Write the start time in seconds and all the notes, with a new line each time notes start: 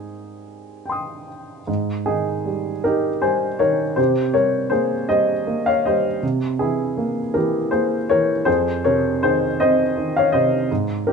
Already playing: G#2 G3 C4 D#4 G#4
0.86 G5 C6
0.92 D#6
1.67 G#2
2.06 D#3 D#4 G#4
2.45 G3
2.84 D#4 G4 A#4
3.22 G3 C5 G#5
3.59 D#3 A#4 C#5
3.96 C3 G4 C5
4.34 G3 A#4 C#5
4.70 A#3 G#4 C5
5.09 G3 C5 D#5
5.47 A#3
5.66 C#5 F5
5.85 G3 C5 D#5
6.23 C3
6.59 E3 E4 G#4
6.97 A#3
7.34 E3 G4 A#4
7.71 A#3 G#4 C5
8.09 E3 A#4 C#5
8.45 F2 G#4 C5
8.84 C3 A#4 C#5
9.23 D#3 G#4 C5
9.60 C4 C5 D#5
9.97 D#3
10.16 C#5 F5
10.32 C3 C5 D#5
10.71 G#2
11.07 D#3 G4 A#4